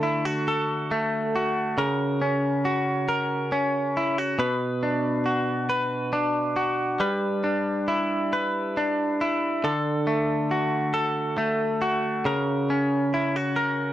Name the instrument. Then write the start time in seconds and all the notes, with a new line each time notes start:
clean electric guitar
Already playing: D3 A3 A4
0.03 E4
0.25 F#4
0.48 A4
0.91 A3
1.36 F#4
1.78 C#3 A#4
2.22 C#4
2.65 F#4
3.09 A#4
3.52 C#4
3.97 E4
4.18 F#4
4.39 B2 B4
4.83 D4
5.26 F#4
5.69 B4
6.13 D4
6.56 F#4
7.00 G3 B4
7.44 D4
7.88 E4
8.33 B4
8.77 D4
9.21 E4
9.64 D3 A4
10.07 A3
10.51 F#4
10.94 A4
11.38 A3
11.82 F#4
12.25 C#3 A#4
12.70 C#4
13.14 E4
13.36 F#4
13.56 A#4